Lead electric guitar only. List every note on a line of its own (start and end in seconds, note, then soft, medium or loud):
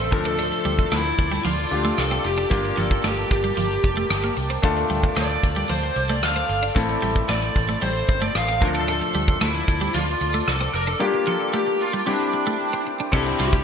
0.00 0.12 A4 loud
0.13 0.26 A#4 medium
0.26 0.38 A4 medium
0.39 0.94 A4 medium
0.92 1.45 E4 medium
1.46 2.00 F4 medium
1.98 2.25 A4 medium
2.25 2.51 G4 medium
2.52 2.78 G4 medium
2.78 3.04 A4 medium
3.05 3.30 G4 medium
3.32 4.33 G4 medium
5.17 5.70 D5 medium
5.70 6.11 C5 medium
6.10 6.23 D5 medium
6.23 6.63 F5 medium
7.30 7.82 D5 medium
7.83 8.22 C5 loud
8.22 8.36 D5 medium
8.36 8.63 F5 medium
8.62 8.67 A#4 medium
8.76 8.88 A4 medium
8.89 9.43 A4 medium
9.42 9.94 E4 medium
9.95 10.49 F4 medium
10.48 10.74 A4 medium
10.74 10.88 A#4 medium
10.88 11.01 A4 medium
11.01 11.27 G4 medium
11.28 11.52 A4 medium
11.54 11.79 G4 medium
11.81 12.05 F4 medium
12.08 12.83 D4 medium
13.14 13.21 A4 medium
13.40 13.64 G4 medium